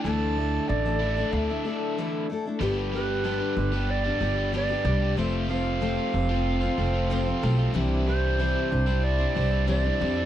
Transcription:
Already playing: D3 A3 D4 E4 A4 D5
0.03 D2 D3 E3 A3 D4 E4 A5
0.07 A4
0.37 A3 D4 E4 A4
0.68 A1 D5
0.85 D3 E3 A3 D4 E4 A4
0.99 D3 A3 D4 E4
1.04 E4 A4
1.17 A3 D4 E4 A4
1.32 D2 F5
1.36 E5
1.49 A3 D4 E4 A4
1.65 A3 D4 E4 A4
1.98 D3 E3 A3 D4 E4 A4
2.30 A3 D4 E4 A4
2.45 A3 D4 E4 A4
2.59 G1 G2 D3 G3 B3 D4 G4 B4 D5
2.91 G3 B3 D4 G4 B4
2.96 B4
3.23 G2 D3 G3 B3 D4 G4 B4
3.40 G3 B3 D4 G4
3.56 G1 G3 D4 G4 B4, muted overdriven electric guitar stroke
3.72 G3 B3 D4 G4 B4
3.90 D5
4.04 G3 B3 D4 G4 B4
4.20 G1 G3 B3 D4 G4 B4
4.36 G3 B3 D4 G4
4.52 G2 D3 G3 B3 D4 G4 B4 D5
4.68 D4 G4 B4
4.84 C2 G3 B3 D4 G4 B4
5.02 G3 B3 D4 G4
5.16 F1 F2 C3 F3 A3 C4 F4 A4 C5 E5
5.48 F3 A3 C4 F4 C5 F5
5.81 F2 C3 F3 A3 C4 F4 C5
5.97 F3 A3 C4 F4
6.13 F1 A3 C4 F4 C5, muted overdriven electric guitar stroke
6.29 F3 A3 C4 F4 C5
6.61 F3 A3 C4 F4 C5
6.77 F1 F3 A3 C4 F4 C5
6.93 F3 A3 C4 F4
7.10 F2 C3 F3 A3 C4 F4 C5
7.25 C4 F4 C5
7.42 B1 F3 A3 C4 F4 C5
7.59 F3 A3 C4 F4
7.73 C2 C3 E3 G3 C4 D4 E4 G4 C5
8.06 E3 G3 C4 D4 E4 C5
8.39 C3 E3 G3 C4 D4 E4 C5
8.54 G3 C4 E4
8.70 C2 G3 D4 E4 C5, muted overdriven electric guitar stroke
8.86 G3 C4 D4 E4 C5
9.03 D5
9.18 G3 C4 D4 E4 C5
9.35 C2 E3 G3 C4 D4 E4 C5
9.51 G3 C4 E4
9.67 C3 E3 G3 C4 D4 E4 C5 D5
9.83 G3 D4 E4 C5
9.99 F2 E3 G3 C4 D4 E4 C5
10.16 G3 C4 E4

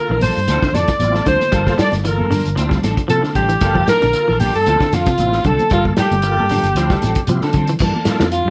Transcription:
Already playing: A#3 F4 A4 A#4
0.09 A#1 E3 A#3 D4, muted clean electric guitar stroke, high conga
0.21 F3 A#3 D4 A4 C5, open hi-hat, high conga, low conga, shekere
0.37 G2, shekere
0.48 D2 F3 C4 D4 E4 F4 A4, snare, closed hi-hat, high conga, shekere
0.62 D3 C4 D4, muted clean electric guitar stroke, kick, snare
0.73 F2 F3 D4 A4 D5, muted clean electric guitar stroke, snare, closed hi-hat, high conga, shekere
0.77 D5
0.88 muted clean electric guitar stroke, kick, snare, closed hi-hat, shekere
0.99 A1 C4 E4 F4, closed hi-hat, high conga, low conga, shekere
1.14 C4 A4, muted clean electric guitar stroke, snare
1.26 D2 D3 F3 C4 D4 C5, muted clean electric guitar stroke, kick, snare, closed hi-hat, low conga, shekere
1.30 C5
1.40 snare, high conga, shekere
1.51 G1 F3 G3 A#3 D4 F4 A4, kick, closed hi-hat, shekere
1.67 A#3 D4 A4, kick, snare, high conga
1.78 F3 G3 A#3 D4 A4 D5, snare, closed hi-hat, low conga, shekere
1.83 D5
1.92 G1, snare, closed hi-hat, high conga, shekere
2.04 E3 A#3 F4 A4 A#4, closed hi-hat, shekere
2.10 A#4
2.18 G2 A#3 A4, muted clean electric guitar stroke, high conga
2.31 D3 F3 A#3 D4, open hi-hat, high conga, low conga, shekere
2.45 G1, closed hi-hat, shekere
2.56 D2 F3 C4 D4 E4 F4, muted clean electric guitar stroke, closed hi-hat, high conga, shekere
2.69 G3 C4 D4, kick, snare
2.83 A1 F3 C4 D4 A4, snare, closed hi-hat, high conga, shekere
2.97 kick, closed hi-hat, shekere
3.08 C3 F3 C4 E4 F4 A4, closed hi-hat, high conga, shekere
3.23 D3 C4 D4 A4, muted fingered electric bass stroke, snare
3.35 A1 F3 C4 D4 G4 A4, kick, closed hi-hat, low conga, shekere
3.49 E3, closed hi-hat, shekere
3.61 G1 F3 A#3 D4 F4 A4, kick, snare, closed hi-hat, shekere
3.75 F3 A#3 D4 A4, kick
3.87 F3 A#3 D4 A4 A#4, muted fingered electric bass stroke, snare, closed hi-hat, shekere
4.02 A#1 D3, snare, high conga, shekere
4.13 A#3 F4 A4, closed hi-hat, shekere
4.28 A#1 E3 A#3 D4 A4
4.40 F3 A#3 D4 G4 A4, open hi-hat, high conga, low conga, shekere
4.45 G4
4.54 G2 A4, shekere
4.59 A4
4.66 D2 F3 C4 D4 E4 F4 A4, muted clean electric guitar stroke, closed hi-hat, high conga, shekere
4.80 D3 C4 D4 A4, kick, snare
4.93 F2 F3 C4 D4 F4 A4, snare, closed hi-hat, high conga, shekere
5.06 C3, kick, snare, closed hi-hat, shekere
5.18 A1 C4 E4 F4, closed hi-hat, high conga, shekere
5.33 C4, snare
5.44 C2 D3 F3 C4 D4 A4, kick, closed hi-hat, low conga, shekere
5.48 A4
5.59 high conga, shekere
5.70 G1 F3 G3 A#3 F4 A4, muted clean electric guitar stroke, kick, closed hi-hat, shekere
5.74 F4
5.85 A#3 A4, kick, high conga
5.96 F3 G3 A#3 D4 G4 A4, snare, closed hi-hat, low conga, shekere
6.01 G4
6.11 G1, closed hi-hat, high conga, shekere
6.22 A#3 F4 A4, muted clean electric guitar stroke, closed hi-hat, shekere
6.37 G2 A#3 D4 A4, high conga
6.49 D3 F3 A#3 D4 A4, open hi-hat, high conga, low conga, shekere
6.63 G1, closed hi-hat, shekere
6.74 D2 F3 C4 D4 E4 F4, closed hi-hat, shekere
6.78 C4, muted clean electric guitar stroke
6.90 G3 C4 D4 A4, kick, snare
7.02 A1 F3 C4 D4 A4, snare, closed hi-hat, high conga, shekere
7.15 kick, closed hi-hat, shekere
7.27 C3 F3 C4 E4, closed hi-hat, high conga, low conga, shekere
7.31 F4
7.41 D3 A4, muted fingered electric bass stroke, snare
7.45 C4 D4
7.53 D3 F3, kick, closed hi-hat, low conga, shekere
7.57 C4 D4 A4
7.67 E3, closed hi-hat, shekere
7.79 G2 E3 F3, kick, crash, shekere
7.83 A#3 D4 A4
7.95 A#3 D4 A4, high conga
8.05 F3 A#3 D4 F4 A4, muted fingered electric bass stroke, snare, closed hi-hat, low conga, shekere
8.20 F2 F3, snare, high conga, shekere
8.32 F4, closed hi-hat, shekere
8.45 G2

